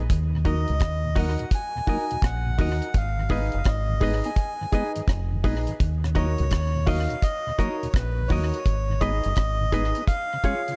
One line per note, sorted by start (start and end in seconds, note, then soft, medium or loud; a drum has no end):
0.10 0.64 D#2 loud
0.10 kick loud
0.10 closed hi-hat loud
0.33 0.39 D#2 medium
0.33 0.39 A#2 medium
0.45 0.55 F#3 medium
0.45 0.56 A#3 medium
0.45 0.70 D#4 loud
0.45 0.56 D#4 medium
0.45 0.62 F#4 medium
0.45 0.70 F#4 medium
0.45 0.70 A#4 medium
0.45 0.62 A#4 medium
0.45 0.70 D#5 loud
0.45 0.62 D#5 medium
0.45 1.20 D#5 loud
0.45 kick medium
0.45 closed hi-hat medium
0.68 0.81 C#2 medium
0.68 0.74 D#2 medium
0.68 0.74 A#2 medium
0.68 closed hi-hat medium
0.80 1.35 D#2 medium
0.80 kick loud
0.80 cross-stick loud
0.80 closed hi-hat medium
1.04 1.10 D#2 medium
1.04 1.10 A#2 medium
1.16 1.26 F#3 medium
1.16 1.26 A#3 medium
1.16 1.41 D#4 medium
1.16 1.27 D#4 medium
1.16 1.32 F#4 loud
1.16 1.41 F#4 medium
1.16 1.41 A#4 medium
1.16 1.33 A#4 medium
1.16 1.41 D#5 loud
1.16 1.33 D#5 loud
1.16 1.51 F#5 medium
1.16 kick loud
1.16 open hi-hat medium
1.39 1.45 D#2 medium
1.39 1.45 A#2 medium
1.39 muted clean electric guitar stroke soft
1.39 closed hi-hat medium
1.51 2.27 G#5 loud
1.51 kick loud
1.51 closed hi-hat medium
1.76 1.81 D#2 medium
1.76 1.81 A#2 medium
1.87 1.98 F#3 medium
1.87 1.98 A#3 medium
1.87 2.12 D#4 medium
1.87 1.98 D#4 medium
1.87 2.12 F#4 medium
1.87 2.04 F#4 medium
1.87 2.12 A#4 medium
1.87 2.05 A#4 medium
1.87 2.13 D#5 loud
1.87 2.05 D#5 medium
1.87 kick medium
1.87 open hi-hat soft
2.11 2.17 D#2 medium
2.11 2.17 A#2 medium
2.11 closed hi-hat medium
2.22 2.56 A#1 loud
2.22 2.98 F#5 loud
2.22 kick loud
2.22 cross-stick loud
2.22 closed hi-hat medium
2.46 2.52 D#2 medium
2.46 2.52 A#2 medium
2.58 2.80 D#2 medium
2.58 2.69 F#3 medium
2.58 2.69 A#3 medium
2.58 2.83 D#4 medium
2.58 2.69 D#4 medium
2.58 2.83 F#4 medium
2.58 2.76 F#4 medium
2.58 2.83 A#4 medium
2.58 2.76 A#4 medium
2.58 2.84 D#5 loud
2.58 2.77 D#5 medium
2.58 kick loud
2.58 open hi-hat medium
2.82 closed hi-hat medium
2.94 3.49 G#1 loud
2.94 3.69 F5 medium
2.94 kick loud
2.94 closed hi-hat loud
3.18 3.23 G#2 medium
3.18 3.23 D#3 medium
3.29 3.41 G#3 medium
3.29 3.41 B3 medium
3.29 3.55 D#4 medium
3.29 3.41 D#4 medium
3.29 3.55 G#4 medium
3.29 3.47 G#4 medium
3.29 3.55 B4 medium
3.29 3.47 B4 medium
3.29 3.55 D#5 medium
3.29 3.48 D#5 medium
3.29 kick medium
3.29 open hi-hat soft
3.52 3.65 F#1 medium
3.52 closed hi-hat medium
3.64 4.20 G#1 loud
3.64 4.27 D#5 medium
3.64 kick loud
3.64 cross-stick loud
3.64 closed hi-hat medium
3.89 3.94 G#2 medium
3.89 3.94 D#3 medium
4.00 4.12 G#3 medium
4.00 4.12 B3 medium
4.00 4.26 D#4 loud
4.00 4.12 D#4 medium
4.00 4.26 G#4 medium
4.00 4.18 G#4 medium
4.00 4.26 B4 medium
4.00 4.19 B4 medium
4.00 4.26 D#5 loud
4.00 4.19 D#5 loud
4.00 kick medium
4.00 open hi-hat medium
4.24 4.31 B3 medium
4.24 4.31 D#4 medium
4.24 4.92 G#5 loud
4.24 muted clean electric guitar stroke medium
4.24 closed hi-hat medium
4.36 kick loud
4.36 closed hi-hat medium
4.61 4.66 G#2 medium
4.61 4.66 D#3 medium
4.72 4.83 G#3 medium
4.72 4.84 B3 medium
4.72 4.97 D#4 medium
4.72 4.84 D#4 medium
4.72 4.97 G#4 medium
4.72 4.89 G#4 medium
4.72 4.98 B4 medium
4.72 4.90 B4 medium
4.72 4.98 D#5 loud
4.72 4.90 D#5 medium
4.72 kick medium
4.72 closed hi-hat medium
4.96 5.02 G#2 medium
4.96 5.02 D#3 medium
4.96 closed hi-hat medium
5.08 5.41 F1 loud
5.08 kick loud
5.08 cross-stick loud
5.08 closed hi-hat medium
5.32 5.38 G#2 medium
5.32 5.38 D#3 medium
5.44 5.65 A#1 medium
5.44 5.54 G#3 medium
5.44 5.55 B3 medium
5.44 5.69 D#4 loud
5.44 5.55 D#4 medium
5.44 5.69 G#4 medium
5.44 5.61 G#4 medium
5.44 5.69 B4 medium
5.44 5.61 B4 medium
5.44 5.69 D#5 loud
5.44 5.62 D#5 medium
5.44 kick loud
5.44 open hi-hat medium
5.67 5.73 G#2 medium
5.67 5.73 D#3 medium
5.67 closed hi-hat medium
5.80 6.35 D#2 medium
5.80 kick loud
5.80 closed hi-hat loud
6.03 6.09 D#2 medium
6.03 6.09 A#2 medium
6.03 cross-stick medium
6.15 6.26 F#3 medium
6.15 6.26 A#3 medium
6.15 6.40 D#4 medium
6.15 6.27 D#4 medium
6.15 6.32 F#4 medium
6.15 6.40 F#4 medium
6.15 6.41 A#4 medium
6.15 6.32 A#4 medium
6.15 6.90 C#5 loud
6.15 6.32 D#5 medium
6.15 6.41 D#5 loud
6.15 kick medium
6.15 closed hi-hat medium
6.38 6.51 C#2 medium
6.38 6.45 D#2 medium
6.38 6.45 A#2 medium
6.38 closed hi-hat medium
6.51 7.06 D#2 medium
6.51 kick medium
6.51 cross-stick loud
6.51 closed hi-hat medium
6.75 6.80 D#2 medium
6.75 6.80 A#2 medium
6.86 6.98 F#3 medium
6.86 6.98 A#3 medium
6.86 7.12 D#4 medium
6.86 6.98 D#4 medium
6.86 7.03 F#4 medium
6.86 7.12 F#4 medium
6.86 7.12 A#4 medium
6.86 7.04 A#4 medium
6.86 7.12 D#5 loud
6.86 7.04 D#5 medium
6.86 7.23 F5 loud
6.86 kick medium
6.86 open hi-hat medium
7.09 7.16 D#2 medium
7.09 7.16 A#2 medium
7.09 muted clean electric guitar stroke medium
7.09 closed hi-hat medium
7.22 7.60 D#5 loud
7.22 kick loud
7.22 closed hi-hat medium
7.47 7.52 D#2 medium
7.47 7.52 A#2 medium
7.58 7.69 F#3 medium
7.58 7.69 A#3 medium
7.58 7.83 D#4 medium
7.58 7.69 D#4 medium
7.58 7.75 F#4 loud
7.58 7.83 F#4 medium
7.58 7.83 A#4 medium
7.58 7.75 A#4 medium
7.58 7.88 C#5 medium
7.58 7.84 D#5 loud
7.58 7.76 D#5 medium
7.58 kick medium
7.58 closed hi-hat medium
7.83 7.88 D#2 medium
7.83 7.88 A#2 medium
7.83 closed hi-hat medium
7.90 7.95 C#5 medium
7.90 kick loud
7.94 8.27 A#1 loud
7.94 8.31 B4 medium
7.94 cross-stick loud
7.94 closed hi-hat medium
8.18 8.23 D#2 medium
8.18 8.23 A#2 medium
8.28 8.51 D#2 loud
8.28 8.40 F#3 medium
8.28 8.40 A#3 medium
8.28 8.54 D#4 medium
8.28 8.40 D#4 medium
8.28 8.54 F#4 medium
8.28 8.47 F#4 medium
8.28 8.55 A#4 medium
8.28 8.47 A#4 medium
8.28 9.02 C#5 loud
8.28 8.55 D#5 loud
8.28 kick loud
8.28 open hi-hat medium
8.32 8.48 D#5 loud
8.54 closed hi-hat medium
8.66 9.20 G#1 loud
8.66 kick loud
8.66 closed hi-hat loud
8.89 8.94 G#2 medium
8.89 8.94 D#3 medium
9.01 9.12 G#3 medium
9.01 9.12 B3 medium
9.01 9.26 D#4 medium
9.01 9.12 D#4 medium
9.01 9.18 G#4 medium
9.01 9.26 G#4 medium
9.01 9.26 B4 medium
9.01 9.18 B4 medium
9.01 10.04 D#5 loud
9.01 9.26 D#5 medium
9.01 9.18 D#5 medium
9.01 kick medium
9.01 closed hi-hat medium
9.23 9.37 F#1 loud
9.23 closed hi-hat soft
9.36 9.91 G#1 medium
9.36 kick loud
9.36 cross-stick loud
9.36 closed hi-hat medium
9.60 9.66 G#2 medium
9.60 9.66 D#3 medium
9.72 9.84 G#3 medium
9.72 9.84 B3 medium
9.72 9.97 D#4 medium
9.72 9.84 D#4 medium
9.72 9.97 G#4 medium
9.72 9.89 G#4 medium
9.72 9.97 B4 medium
9.72 9.90 B4 medium
9.72 9.98 D#5 loud
9.72 9.90 D#5 medium
9.72 kick medium
9.72 closed hi-hat medium
9.95 10.02 B3 medium
9.95 10.02 D#4 medium
9.95 muted clean electric guitar stroke medium
9.95 closed hi-hat medium
10.08 10.76 F5 loud
10.08 kick loud
10.08 closed hi-hat loud
10.33 10.38 C#3 medium
10.44 10.55 G#3 medium
10.44 10.55 C#4 medium
10.44 10.69 F4 medium
10.44 10.61 F4 medium
10.44 10.55 F4 medium
10.44 10.69 G#4 medium
10.44 10.61 G#4 medium
10.44 10.69 C#5 medium
10.44 10.61 C#5 medium
10.44 10.69 F5 loud
10.44 kick medium
10.44 closed hi-hat medium
10.68 10.73 C#3 medium
10.68 closed hi-hat medium